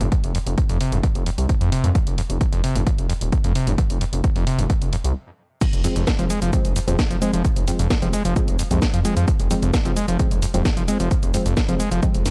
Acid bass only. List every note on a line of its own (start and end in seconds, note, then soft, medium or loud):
0.01 0.07 F2 medium
0.12 0.16 F2 medium
0.35 0.39 F2 medium
0.58 0.64 F1 medium
0.69 0.79 F2 medium
0.81 0.94 C3 medium
0.92 0.98 F2 medium
1.03 1.07 F2 medium
1.26 1.30 F2 medium
1.49 1.56 F1 medium
1.61 1.70 F2 medium
1.72 1.85 C3 medium
1.84 1.90 F2 medium
1.95 1.99 F2 medium
2.18 2.22 F2 medium
2.41 2.47 F1 medium
2.53 2.62 F2 medium
2.64 2.77 C3 medium
2.75 2.82 F2 medium
2.87 2.91 F2 medium
3.09 3.13 F2 medium
3.32 3.39 F1 medium
3.44 3.53 F2 medium
3.55 3.69 C3 medium
3.67 3.73 F2 medium
3.78 3.82 F2 medium
4.01 4.05 F2 medium
4.24 4.30 F1 medium
4.36 4.45 F2 medium
4.47 4.60 C3 medium
4.59 4.65 F2 medium
4.70 4.74 F2 medium
4.93 4.97 F2 medium
5.61 5.65 F2 medium
5.84 5.88 F2 medium
5.96 6.05 F2 medium
6.19 6.25 F3 loud
6.30 6.40 G#3 loud
6.42 6.51 F3 loud
6.53 6.57 F2 medium
6.76 6.80 F2 medium
6.88 6.97 F2 medium
7.11 7.17 F3 loud
7.22 7.31 G#3 loud
7.33 7.43 F3 loud
7.45 7.48 F2 medium
7.67 7.71 F2 medium
7.79 7.88 F2 medium
8.02 8.08 F3 loud
8.13 8.23 G#3 loud
8.25 8.34 F3 loud
8.36 8.40 F2 medium
8.59 8.63 F2 medium
8.71 8.80 F2 medium
8.94 9.00 F3 loud
9.05 9.15 G#3 loud
9.17 9.26 F3 loud
9.28 9.32 F2 medium
9.51 9.55 F2 medium
9.62 9.72 F2 medium
9.85 9.91 F3 loud
9.96 10.06 G#3 loud
10.08 10.17 F3 loud
10.19 10.23 F2 medium
10.42 10.46 F2 medium
10.54 10.63 F2 medium
10.77 10.83 F3 loud
10.88 10.98 G#3 loud
11.00 11.09 F3 loud
11.11 11.15 F2 medium
11.34 11.38 F2 medium
11.46 11.55 F2 medium
11.69 11.75 F3 loud
11.80 11.89 G#3 loud
11.91 12.01 F3 loud
12.03 12.06 F2 medium
12.26 12.29 F2 medium